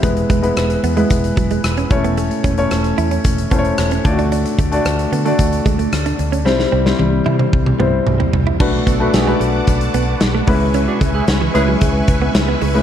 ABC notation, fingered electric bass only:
X:1
M:4/4
L:1/8
Q:1/4=112
K:Bdor
V:1 name="Fingered electric bass" clef=bass
E,,, E,,, E,,, E,, E,,, E,,, E,,, E,,,- | E,,, E,,, E,,, E,, E,,, E,,, E,,, D,,- | D,, D,, D,, D, D,, D,, D,, D,, | =C,, C,, C,, =C, C,, C,, C,, C,, |
B,,, B,,, B,,, B,,, B,,, B,,, B,,, C,,- | C,, C,, C,, C,, C,, C,, C,, C,, |]